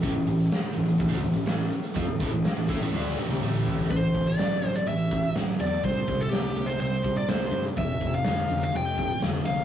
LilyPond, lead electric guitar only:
\new Staff \with { instrumentName = "Lead electric guitar" } { \time 4/4 \key a \minor \tempo 4 = 124 r1 | r1 | c''8. d''4 d''16 e''4 r8 d''8 | c''8. a'16 g'8. c''16 c''8. d''16 c''8. r16 |
e''8. f''4 f''16 g''4 r8 f''8 | }